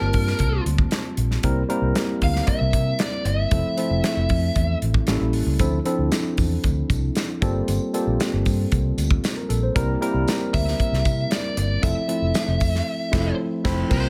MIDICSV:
0, 0, Header, 1, 5, 480
1, 0, Start_track
1, 0, Tempo, 519931
1, 1327, Time_signature, 4, 2, 24, 8
1, 13008, End_track
2, 0, Start_track
2, 0, Title_t, "Lead electric guitar"
2, 0, Program_c, 0, 29
2, 0, Note_on_c, 0, 70, 65
2, 578, Note_off_c, 0, 70, 0
2, 2064, Note_on_c, 0, 77, 91
2, 2287, Note_off_c, 0, 77, 0
2, 2291, Note_on_c, 0, 76, 97
2, 2769, Note_off_c, 0, 76, 0
2, 2772, Note_on_c, 0, 74, 83
2, 3009, Note_off_c, 0, 74, 0
2, 3012, Note_on_c, 0, 76, 83
2, 4413, Note_off_c, 0, 76, 0
2, 9728, Note_on_c, 0, 76, 106
2, 10448, Note_off_c, 0, 76, 0
2, 10452, Note_on_c, 0, 74, 96
2, 10681, Note_off_c, 0, 74, 0
2, 10692, Note_on_c, 0, 74, 84
2, 10925, Note_off_c, 0, 74, 0
2, 10928, Note_on_c, 0, 76, 98
2, 12327, Note_off_c, 0, 76, 0
2, 12860, Note_on_c, 0, 72, 94
2, 13008, Note_off_c, 0, 72, 0
2, 13008, End_track
3, 0, Start_track
3, 0, Title_t, "Tine electric piano"
3, 0, Program_c, 1, 4
3, 0, Control_c, 1, 64, 127
3, 0, Note_on_c, 1, 55, 71
3, 0, Note_on_c, 1, 58, 62
3, 0, Note_on_c, 1, 60, 62
3, 0, Note_on_c, 1, 65, 61
3, 0, Note_on_c, 1, 81, 76
3, 325, Note_off_c, 1, 55, 0
3, 325, Note_off_c, 1, 58, 0
3, 327, Note_off_c, 1, 60, 0
3, 327, Note_off_c, 1, 65, 0
3, 327, Note_off_c, 1, 81, 0
3, 1323, Note_on_c, 1, 58, 73
3, 1324, Note_on_c, 1, 55, 78
3, 1329, Note_on_c, 1, 60, 77
3, 1334, Note_on_c, 1, 64, 75
3, 1335, Note_on_c, 1, 70, 89
3, 1340, Control_c, 1, 64, 0
3, 1494, Note_off_c, 1, 58, 0
3, 1495, Note_off_c, 1, 55, 0
3, 1497, Note_off_c, 1, 60, 0
3, 1499, Note_off_c, 1, 64, 0
3, 1500, Note_off_c, 1, 70, 0
3, 1527, Control_c, 1, 64, 127
3, 1555, Note_on_c, 1, 55, 91
3, 1562, Note_on_c, 1, 58, 82
3, 1565, Note_on_c, 1, 60, 76
3, 1565, Note_on_c, 1, 64, 72
3, 1567, Note_on_c, 1, 70, 93
3, 2238, Note_off_c, 1, 55, 0
3, 2242, Note_off_c, 1, 58, 0
3, 2243, Note_off_c, 1, 60, 0
3, 2243, Note_off_c, 1, 64, 0
3, 2244, Note_off_c, 1, 70, 0
3, 3242, Note_on_c, 1, 53, 68
3, 3243, Note_on_c, 1, 57, 55
3, 3245, Note_on_c, 1, 60, 63
3, 3246, Note_on_c, 1, 64, 60
3, 3252, Note_on_c, 1, 69, 83
3, 3260, Control_c, 1, 64, 0
3, 3392, Control_c, 1, 64, 127
3, 3414, Note_off_c, 1, 53, 0
3, 3414, Note_off_c, 1, 57, 0
3, 3415, Note_off_c, 1, 60, 0
3, 3416, Note_off_c, 1, 64, 0
3, 3419, Note_off_c, 1, 69, 0
3, 3478, Note_on_c, 1, 53, 62
3, 3481, Note_on_c, 1, 57, 63
3, 3484, Note_on_c, 1, 60, 64
3, 3485, Note_on_c, 1, 64, 70
3, 3488, Note_on_c, 1, 69, 82
3, 4160, Note_off_c, 1, 53, 0
3, 4161, Note_off_c, 1, 57, 0
3, 4163, Note_off_c, 1, 60, 0
3, 4163, Note_off_c, 1, 64, 0
3, 4165, Note_off_c, 1, 69, 0
3, 4681, Note_on_c, 1, 55, 80
3, 4685, Note_on_c, 1, 58, 72
3, 4685, Note_on_c, 1, 61, 71
3, 4692, Note_on_c, 1, 64, 73
3, 4696, Note_on_c, 1, 69, 89
3, 4701, Control_c, 1, 64, 0
3, 4866, Control_c, 1, 64, 127
3, 5069, Note_off_c, 1, 55, 0
3, 5070, Note_off_c, 1, 61, 0
3, 5071, Note_off_c, 1, 58, 0
3, 5074, Note_off_c, 1, 64, 0
3, 5076, Note_off_c, 1, 69, 0
3, 5164, Note_on_c, 1, 53, 80
3, 5166, Note_on_c, 1, 60, 79
3, 5171, Note_on_c, 1, 62, 72
3, 5173, Note_on_c, 1, 64, 79
3, 5174, Note_on_c, 1, 69, 86
3, 5181, Control_c, 1, 64, 0
3, 5335, Note_off_c, 1, 53, 0
3, 5336, Note_off_c, 1, 60, 0
3, 5339, Note_off_c, 1, 62, 0
3, 5340, Note_off_c, 1, 64, 0
3, 5340, Note_off_c, 1, 69, 0
3, 5371, Control_c, 1, 64, 127
3, 5399, Note_on_c, 1, 53, 73
3, 5406, Note_on_c, 1, 60, 79
3, 5407, Note_on_c, 1, 62, 73
3, 5408, Note_on_c, 1, 64, 70
3, 5411, Note_on_c, 1, 69, 92
3, 6080, Note_off_c, 1, 53, 0
3, 6084, Note_off_c, 1, 60, 0
3, 6084, Note_off_c, 1, 62, 0
3, 6085, Note_off_c, 1, 64, 0
3, 6086, Note_off_c, 1, 69, 0
3, 6846, Note_on_c, 1, 55, 100
3, 6846, Note_on_c, 1, 58, 85
3, 6852, Note_on_c, 1, 60, 84
3, 6852, Note_on_c, 1, 65, 80
3, 6854, Note_on_c, 1, 69, 103
3, 6857, Control_c, 1, 64, 0
3, 7011, Control_c, 1, 64, 127
3, 7231, Note_off_c, 1, 55, 0
3, 7231, Note_off_c, 1, 58, 0
3, 7234, Note_off_c, 1, 60, 0
3, 7234, Note_off_c, 1, 65, 0
3, 7235, Note_off_c, 1, 69, 0
3, 7327, Note_on_c, 1, 55, 81
3, 7327, Note_on_c, 1, 58, 74
3, 7330, Note_on_c, 1, 60, 71
3, 7334, Note_on_c, 1, 65, 67
3, 7334, Note_on_c, 1, 69, 86
3, 8004, Note_off_c, 1, 55, 0
3, 8004, Note_off_c, 1, 58, 0
3, 8006, Note_off_c, 1, 60, 0
3, 8007, Note_off_c, 1, 65, 0
3, 8007, Note_off_c, 1, 69, 0
3, 8644, Note_on_c, 1, 70, 53
3, 8759, Note_off_c, 1, 70, 0
3, 8762, Note_on_c, 1, 69, 72
3, 8878, Note_off_c, 1, 69, 0
3, 8892, Note_on_c, 1, 72, 63
3, 9001, Note_on_c, 1, 55, 92
3, 9003, Note_on_c, 1, 58, 72
3, 9004, Note_on_c, 1, 60, 76
3, 9007, Note_on_c, 1, 64, 74
3, 9010, Note_on_c, 1, 70, 98
3, 9020, Control_c, 1, 64, 0
3, 9117, Note_off_c, 1, 72, 0
3, 9173, Note_off_c, 1, 55, 0
3, 9174, Note_off_c, 1, 58, 0
3, 9174, Note_off_c, 1, 60, 0
3, 9176, Note_off_c, 1, 64, 0
3, 9177, Note_off_c, 1, 70, 0
3, 9185, Control_c, 1, 64, 127
3, 9243, Note_on_c, 1, 55, 94
3, 9243, Note_on_c, 1, 58, 77
3, 9246, Note_on_c, 1, 60, 82
3, 9248, Note_on_c, 1, 64, 73
3, 9250, Note_on_c, 1, 70, 93
3, 9921, Note_off_c, 1, 55, 0
3, 9921, Note_off_c, 1, 58, 0
3, 9922, Note_off_c, 1, 60, 0
3, 9923, Note_off_c, 1, 64, 0
3, 9924, Note_off_c, 1, 70, 0
3, 10910, Note_on_c, 1, 53, 70
3, 10913, Note_on_c, 1, 57, 67
3, 10916, Note_on_c, 1, 60, 63
3, 10920, Note_on_c, 1, 64, 60
3, 10921, Note_on_c, 1, 69, 83
3, 10936, Control_c, 1, 64, 0
3, 11086, Note_off_c, 1, 53, 0
3, 11088, Note_off_c, 1, 57, 0
3, 11089, Note_off_c, 1, 60, 0
3, 11091, Note_off_c, 1, 64, 0
3, 11092, Note_off_c, 1, 69, 0
3, 11114, Control_c, 1, 64, 127
3, 11149, Note_on_c, 1, 53, 66
3, 11153, Note_on_c, 1, 57, 66
3, 11153, Note_on_c, 1, 60, 65
3, 11157, Note_on_c, 1, 64, 60
3, 11160, Note_on_c, 1, 69, 74
3, 11832, Note_off_c, 1, 53, 0
3, 11834, Note_off_c, 1, 60, 0
3, 11835, Note_off_c, 1, 57, 0
3, 11837, Note_off_c, 1, 64, 0
3, 11838, Note_off_c, 1, 69, 0
3, 12105, Note_on_c, 1, 53, 74
3, 12110, Note_on_c, 1, 57, 82
3, 12110, Note_on_c, 1, 60, 78
3, 12116, Note_on_c, 1, 64, 75
3, 12120, Note_on_c, 1, 69, 83
3, 12276, Note_off_c, 1, 53, 0
3, 12278, Note_off_c, 1, 57, 0
3, 12278, Note_off_c, 1, 60, 0
3, 12281, Note_off_c, 1, 64, 0
3, 12284, Note_off_c, 1, 69, 0
3, 12592, Note_on_c, 1, 53, 91
3, 12593, Note_on_c, 1, 57, 90
3, 12597, Note_on_c, 1, 60, 99
3, 12600, Note_on_c, 1, 69, 88
3, 12601, Note_on_c, 1, 64, 101
3, 12759, Note_off_c, 1, 53, 0
3, 12760, Note_off_c, 1, 57, 0
3, 12762, Note_off_c, 1, 60, 0
3, 12763, Note_off_c, 1, 69, 0
3, 12764, Note_off_c, 1, 64, 0
3, 12821, Note_on_c, 1, 55, 69
3, 12824, Note_on_c, 1, 58, 58
3, 12828, Note_on_c, 1, 60, 63
3, 12832, Note_on_c, 1, 65, 60
3, 12835, Note_on_c, 1, 70, 77
3, 12852, Control_c, 1, 64, 0
3, 13007, Control_c, 1, 64, 127
3, 13008, Note_off_c, 1, 55, 0
3, 13008, Note_off_c, 1, 58, 0
3, 13008, Note_off_c, 1, 60, 0
3, 13008, Note_off_c, 1, 65, 0
3, 13008, Note_off_c, 1, 70, 0
3, 13008, End_track
4, 0, Start_track
4, 0, Title_t, "Fingered electric bass"
4, 0, Program_c, 2, 33
4, 10, Note_on_c, 2, 31, 77
4, 94, Note_off_c, 2, 31, 0
4, 130, Note_on_c, 2, 43, 81
4, 299, Note_off_c, 2, 43, 0
4, 367, Note_on_c, 2, 36, 104
4, 537, Note_off_c, 2, 36, 0
4, 604, Note_on_c, 2, 38, 86
4, 776, Note_off_c, 2, 38, 0
4, 1084, Note_on_c, 2, 34, 82
4, 1256, Note_off_c, 2, 34, 0
4, 1325, Note_on_c, 2, 36, 95
4, 1496, Note_off_c, 2, 36, 0
4, 1675, Note_on_c, 2, 36, 82
4, 1765, Note_off_c, 2, 36, 0
4, 2046, Note_on_c, 2, 38, 79
4, 2217, Note_off_c, 2, 38, 0
4, 2408, Note_on_c, 2, 36, 101
4, 2493, Note_off_c, 2, 36, 0
4, 2526, Note_on_c, 2, 48, 101
4, 2697, Note_off_c, 2, 48, 0
4, 2998, Note_on_c, 2, 31, 82
4, 3172, Note_off_c, 2, 31, 0
4, 3248, Note_on_c, 2, 29, 97
4, 3333, Note_off_c, 2, 29, 0
4, 3604, Note_on_c, 2, 29, 82
4, 3691, Note_off_c, 2, 29, 0
4, 3845, Note_on_c, 2, 29, 80
4, 3932, Note_off_c, 2, 29, 0
4, 3968, Note_on_c, 2, 41, 91
4, 4138, Note_off_c, 2, 41, 0
4, 4209, Note_on_c, 2, 40, 95
4, 4379, Note_off_c, 2, 40, 0
4, 4448, Note_on_c, 2, 33, 83
4, 4619, Note_off_c, 2, 33, 0
4, 4687, Note_on_c, 2, 33, 90
4, 4773, Note_off_c, 2, 33, 0
4, 4808, Note_on_c, 2, 34, 72
4, 4923, Note_off_c, 2, 34, 0
4, 4923, Note_on_c, 2, 33, 73
4, 5010, Note_off_c, 2, 33, 0
4, 5043, Note_on_c, 2, 37, 71
4, 5130, Note_off_c, 2, 37, 0
4, 5170, Note_on_c, 2, 38, 101
4, 5340, Note_off_c, 2, 38, 0
4, 5526, Note_on_c, 2, 38, 77
4, 5612, Note_off_c, 2, 38, 0
4, 5889, Note_on_c, 2, 40, 85
4, 6059, Note_off_c, 2, 40, 0
4, 6129, Note_on_c, 2, 38, 78
4, 6299, Note_off_c, 2, 38, 0
4, 6368, Note_on_c, 2, 36, 80
4, 6539, Note_off_c, 2, 36, 0
4, 6850, Note_on_c, 2, 31, 86
4, 7020, Note_off_c, 2, 31, 0
4, 7091, Note_on_c, 2, 31, 111
4, 7175, Note_off_c, 2, 31, 0
4, 7449, Note_on_c, 2, 34, 80
4, 7534, Note_off_c, 2, 34, 0
4, 7693, Note_on_c, 2, 31, 80
4, 7776, Note_off_c, 2, 31, 0
4, 7811, Note_on_c, 2, 43, 84
4, 7981, Note_off_c, 2, 43, 0
4, 8052, Note_on_c, 2, 36, 93
4, 8221, Note_off_c, 2, 36, 0
4, 8285, Note_on_c, 2, 38, 90
4, 8457, Note_off_c, 2, 38, 0
4, 8767, Note_on_c, 2, 34, 81
4, 8937, Note_off_c, 2, 34, 0
4, 9010, Note_on_c, 2, 36, 105
4, 9179, Note_off_c, 2, 36, 0
4, 9361, Note_on_c, 2, 36, 85
4, 9448, Note_off_c, 2, 36, 0
4, 9731, Note_on_c, 2, 38, 85
4, 9900, Note_off_c, 2, 38, 0
4, 10082, Note_on_c, 2, 36, 106
4, 10168, Note_off_c, 2, 36, 0
4, 10204, Note_on_c, 2, 48, 88
4, 10375, Note_off_c, 2, 48, 0
4, 10681, Note_on_c, 2, 31, 80
4, 10853, Note_off_c, 2, 31, 0
4, 10923, Note_on_c, 2, 29, 93
4, 11009, Note_off_c, 2, 29, 0
4, 11279, Note_on_c, 2, 29, 81
4, 11366, Note_off_c, 2, 29, 0
4, 11521, Note_on_c, 2, 29, 96
4, 11607, Note_off_c, 2, 29, 0
4, 11645, Note_on_c, 2, 41, 91
4, 11815, Note_off_c, 2, 41, 0
4, 12123, Note_on_c, 2, 29, 97
4, 12286, Note_off_c, 2, 29, 0
4, 12602, Note_on_c, 2, 29, 99
4, 12765, Note_off_c, 2, 29, 0
4, 12843, Note_on_c, 2, 36, 97
4, 13008, Note_off_c, 2, 36, 0
4, 13008, End_track
5, 0, Start_track
5, 0, Title_t, "Drums"
5, 121, Note_on_c, 9, 46, 60
5, 130, Note_on_c, 9, 36, 78
5, 214, Note_off_c, 9, 46, 0
5, 222, Note_off_c, 9, 36, 0
5, 252, Note_on_c, 9, 38, 33
5, 345, Note_off_c, 9, 38, 0
5, 358, Note_on_c, 9, 42, 84
5, 368, Note_on_c, 9, 36, 64
5, 451, Note_off_c, 9, 42, 0
5, 460, Note_off_c, 9, 36, 0
5, 611, Note_on_c, 9, 42, 66
5, 704, Note_off_c, 9, 42, 0
5, 724, Note_on_c, 9, 36, 87
5, 816, Note_off_c, 9, 36, 0
5, 839, Note_on_c, 9, 42, 65
5, 850, Note_on_c, 9, 38, 93
5, 932, Note_off_c, 9, 42, 0
5, 942, Note_off_c, 9, 38, 0
5, 1083, Note_on_c, 9, 42, 63
5, 1175, Note_off_c, 9, 42, 0
5, 1210, Note_on_c, 9, 38, 32
5, 1302, Note_off_c, 9, 38, 0
5, 1323, Note_on_c, 9, 42, 105
5, 1327, Note_on_c, 9, 36, 89
5, 1415, Note_off_c, 9, 42, 0
5, 1419, Note_off_c, 9, 36, 0
5, 1568, Note_on_c, 9, 42, 59
5, 1660, Note_off_c, 9, 42, 0
5, 1805, Note_on_c, 9, 42, 79
5, 1808, Note_on_c, 9, 38, 97
5, 1897, Note_off_c, 9, 42, 0
5, 1900, Note_off_c, 9, 38, 0
5, 2045, Note_on_c, 9, 46, 58
5, 2048, Note_on_c, 9, 36, 66
5, 2137, Note_off_c, 9, 46, 0
5, 2141, Note_off_c, 9, 36, 0
5, 2175, Note_on_c, 9, 38, 32
5, 2268, Note_off_c, 9, 38, 0
5, 2281, Note_on_c, 9, 42, 89
5, 2286, Note_on_c, 9, 36, 74
5, 2373, Note_off_c, 9, 42, 0
5, 2379, Note_off_c, 9, 36, 0
5, 2523, Note_on_c, 9, 36, 77
5, 2526, Note_on_c, 9, 42, 68
5, 2615, Note_off_c, 9, 36, 0
5, 2618, Note_off_c, 9, 42, 0
5, 2758, Note_on_c, 9, 42, 68
5, 2768, Note_on_c, 9, 38, 91
5, 2850, Note_off_c, 9, 42, 0
5, 2860, Note_off_c, 9, 38, 0
5, 3004, Note_on_c, 9, 42, 72
5, 3096, Note_off_c, 9, 42, 0
5, 3242, Note_on_c, 9, 42, 88
5, 3245, Note_on_c, 9, 36, 101
5, 3334, Note_off_c, 9, 42, 0
5, 3337, Note_off_c, 9, 36, 0
5, 3485, Note_on_c, 9, 42, 70
5, 3578, Note_off_c, 9, 42, 0
5, 3727, Note_on_c, 9, 42, 80
5, 3731, Note_on_c, 9, 38, 102
5, 3819, Note_off_c, 9, 42, 0
5, 3823, Note_off_c, 9, 38, 0
5, 3961, Note_on_c, 9, 46, 58
5, 3969, Note_on_c, 9, 36, 75
5, 4054, Note_off_c, 9, 46, 0
5, 4061, Note_off_c, 9, 36, 0
5, 4206, Note_on_c, 9, 42, 81
5, 4208, Note_on_c, 9, 36, 73
5, 4298, Note_off_c, 9, 42, 0
5, 4301, Note_off_c, 9, 36, 0
5, 4450, Note_on_c, 9, 42, 63
5, 4543, Note_off_c, 9, 42, 0
5, 4564, Note_on_c, 9, 36, 89
5, 4656, Note_off_c, 9, 36, 0
5, 4678, Note_on_c, 9, 42, 78
5, 4688, Note_on_c, 9, 38, 89
5, 4770, Note_off_c, 9, 42, 0
5, 4780, Note_off_c, 9, 38, 0
5, 4921, Note_on_c, 9, 46, 70
5, 5014, Note_off_c, 9, 46, 0
5, 5164, Note_on_c, 9, 42, 105
5, 5167, Note_on_c, 9, 36, 90
5, 5173, Note_on_c, 9, 54, 51
5, 5256, Note_off_c, 9, 42, 0
5, 5259, Note_off_c, 9, 36, 0
5, 5265, Note_off_c, 9, 54, 0
5, 5405, Note_on_c, 9, 42, 71
5, 5413, Note_on_c, 9, 54, 28
5, 5498, Note_off_c, 9, 42, 0
5, 5505, Note_off_c, 9, 54, 0
5, 5647, Note_on_c, 9, 42, 80
5, 5650, Note_on_c, 9, 38, 104
5, 5650, Note_on_c, 9, 54, 68
5, 5739, Note_off_c, 9, 42, 0
5, 5742, Note_off_c, 9, 38, 0
5, 5742, Note_off_c, 9, 54, 0
5, 5884, Note_on_c, 9, 46, 57
5, 5890, Note_on_c, 9, 36, 75
5, 5898, Note_on_c, 9, 54, 46
5, 5976, Note_off_c, 9, 46, 0
5, 5983, Note_off_c, 9, 36, 0
5, 5990, Note_off_c, 9, 54, 0
5, 6127, Note_on_c, 9, 42, 83
5, 6129, Note_on_c, 9, 54, 27
5, 6131, Note_on_c, 9, 36, 74
5, 6219, Note_off_c, 9, 42, 0
5, 6222, Note_off_c, 9, 54, 0
5, 6223, Note_off_c, 9, 36, 0
5, 6368, Note_on_c, 9, 36, 77
5, 6371, Note_on_c, 9, 54, 51
5, 6373, Note_on_c, 9, 42, 64
5, 6460, Note_off_c, 9, 36, 0
5, 6463, Note_off_c, 9, 54, 0
5, 6466, Note_off_c, 9, 42, 0
5, 6605, Note_on_c, 9, 42, 70
5, 6615, Note_on_c, 9, 38, 85
5, 6616, Note_on_c, 9, 54, 74
5, 6697, Note_off_c, 9, 42, 0
5, 6707, Note_off_c, 9, 38, 0
5, 6709, Note_off_c, 9, 54, 0
5, 6850, Note_on_c, 9, 36, 96
5, 6850, Note_on_c, 9, 42, 71
5, 6857, Note_on_c, 9, 54, 42
5, 6942, Note_off_c, 9, 36, 0
5, 6943, Note_off_c, 9, 42, 0
5, 6949, Note_off_c, 9, 54, 0
5, 7091, Note_on_c, 9, 42, 89
5, 7094, Note_on_c, 9, 54, 47
5, 7183, Note_off_c, 9, 42, 0
5, 7186, Note_off_c, 9, 54, 0
5, 7328, Note_on_c, 9, 54, 31
5, 7333, Note_on_c, 9, 42, 62
5, 7421, Note_off_c, 9, 54, 0
5, 7425, Note_off_c, 9, 42, 0
5, 7569, Note_on_c, 9, 54, 71
5, 7573, Note_on_c, 9, 42, 83
5, 7576, Note_on_c, 9, 38, 106
5, 7662, Note_off_c, 9, 54, 0
5, 7665, Note_off_c, 9, 42, 0
5, 7669, Note_off_c, 9, 38, 0
5, 7805, Note_on_c, 9, 46, 58
5, 7812, Note_on_c, 9, 36, 70
5, 7815, Note_on_c, 9, 54, 44
5, 7898, Note_off_c, 9, 46, 0
5, 7904, Note_off_c, 9, 36, 0
5, 7907, Note_off_c, 9, 54, 0
5, 8047, Note_on_c, 9, 42, 80
5, 8052, Note_on_c, 9, 36, 79
5, 8054, Note_on_c, 9, 54, 26
5, 8139, Note_off_c, 9, 42, 0
5, 8144, Note_off_c, 9, 36, 0
5, 8146, Note_off_c, 9, 54, 0
5, 8288, Note_on_c, 9, 54, 59
5, 8293, Note_on_c, 9, 42, 71
5, 8380, Note_off_c, 9, 54, 0
5, 8385, Note_off_c, 9, 42, 0
5, 8406, Note_on_c, 9, 36, 95
5, 8499, Note_off_c, 9, 36, 0
5, 8528, Note_on_c, 9, 42, 72
5, 8536, Note_on_c, 9, 54, 77
5, 8538, Note_on_c, 9, 38, 92
5, 8620, Note_off_c, 9, 42, 0
5, 8628, Note_off_c, 9, 54, 0
5, 8630, Note_off_c, 9, 38, 0
5, 8771, Note_on_c, 9, 42, 74
5, 8771, Note_on_c, 9, 54, 39
5, 8863, Note_off_c, 9, 42, 0
5, 8864, Note_off_c, 9, 54, 0
5, 9008, Note_on_c, 9, 36, 99
5, 9010, Note_on_c, 9, 42, 96
5, 9016, Note_on_c, 9, 54, 50
5, 9101, Note_off_c, 9, 36, 0
5, 9102, Note_off_c, 9, 42, 0
5, 9108, Note_off_c, 9, 54, 0
5, 9251, Note_on_c, 9, 54, 27
5, 9255, Note_on_c, 9, 42, 62
5, 9343, Note_off_c, 9, 54, 0
5, 9347, Note_off_c, 9, 42, 0
5, 9486, Note_on_c, 9, 54, 71
5, 9493, Note_on_c, 9, 42, 82
5, 9496, Note_on_c, 9, 38, 102
5, 9579, Note_off_c, 9, 54, 0
5, 9585, Note_off_c, 9, 42, 0
5, 9588, Note_off_c, 9, 38, 0
5, 9726, Note_on_c, 9, 54, 49
5, 9728, Note_on_c, 9, 46, 58
5, 9729, Note_on_c, 9, 36, 76
5, 9818, Note_off_c, 9, 54, 0
5, 9821, Note_off_c, 9, 36, 0
5, 9821, Note_off_c, 9, 46, 0
5, 9861, Note_on_c, 9, 38, 34
5, 9953, Note_off_c, 9, 38, 0
5, 9960, Note_on_c, 9, 54, 29
5, 9969, Note_on_c, 9, 36, 68
5, 9971, Note_on_c, 9, 42, 74
5, 10053, Note_off_c, 9, 54, 0
5, 10061, Note_off_c, 9, 36, 0
5, 10063, Note_off_c, 9, 42, 0
5, 10098, Note_on_c, 9, 38, 30
5, 10191, Note_off_c, 9, 38, 0
5, 10205, Note_on_c, 9, 36, 83
5, 10206, Note_on_c, 9, 54, 54
5, 10216, Note_on_c, 9, 42, 59
5, 10297, Note_off_c, 9, 36, 0
5, 10299, Note_off_c, 9, 54, 0
5, 10308, Note_off_c, 9, 42, 0
5, 10440, Note_on_c, 9, 42, 70
5, 10444, Note_on_c, 9, 54, 75
5, 10450, Note_on_c, 9, 38, 94
5, 10532, Note_off_c, 9, 42, 0
5, 10537, Note_off_c, 9, 54, 0
5, 10542, Note_off_c, 9, 38, 0
5, 10684, Note_on_c, 9, 42, 68
5, 10686, Note_on_c, 9, 54, 44
5, 10776, Note_off_c, 9, 42, 0
5, 10779, Note_off_c, 9, 54, 0
5, 10922, Note_on_c, 9, 36, 97
5, 10922, Note_on_c, 9, 42, 98
5, 10924, Note_on_c, 9, 54, 53
5, 11014, Note_off_c, 9, 36, 0
5, 11014, Note_off_c, 9, 42, 0
5, 11016, Note_off_c, 9, 54, 0
5, 11161, Note_on_c, 9, 42, 66
5, 11254, Note_off_c, 9, 42, 0
5, 11395, Note_on_c, 9, 54, 70
5, 11401, Note_on_c, 9, 42, 79
5, 11404, Note_on_c, 9, 38, 108
5, 11487, Note_off_c, 9, 54, 0
5, 11493, Note_off_c, 9, 42, 0
5, 11497, Note_off_c, 9, 38, 0
5, 11635, Note_on_c, 9, 46, 59
5, 11642, Note_on_c, 9, 36, 77
5, 11644, Note_on_c, 9, 54, 46
5, 11728, Note_off_c, 9, 46, 0
5, 11735, Note_off_c, 9, 36, 0
5, 11736, Note_off_c, 9, 54, 0
5, 11773, Note_on_c, 9, 38, 35
5, 11866, Note_off_c, 9, 38, 0
5, 12121, Note_on_c, 9, 36, 105
5, 12122, Note_on_c, 9, 49, 75
5, 12126, Note_on_c, 9, 38, 89
5, 12214, Note_off_c, 9, 36, 0
5, 12215, Note_off_c, 9, 49, 0
5, 12218, Note_off_c, 9, 38, 0
5, 12600, Note_on_c, 9, 36, 100
5, 12600, Note_on_c, 9, 49, 80
5, 12604, Note_on_c, 9, 38, 88
5, 12693, Note_off_c, 9, 36, 0
5, 12693, Note_off_c, 9, 49, 0
5, 12696, Note_off_c, 9, 38, 0
5, 12839, Note_on_c, 9, 54, 47
5, 12840, Note_on_c, 9, 36, 104
5, 12842, Note_on_c, 9, 49, 85
5, 12931, Note_off_c, 9, 54, 0
5, 12933, Note_off_c, 9, 36, 0
5, 12934, Note_off_c, 9, 49, 0
5, 13008, End_track
0, 0, End_of_file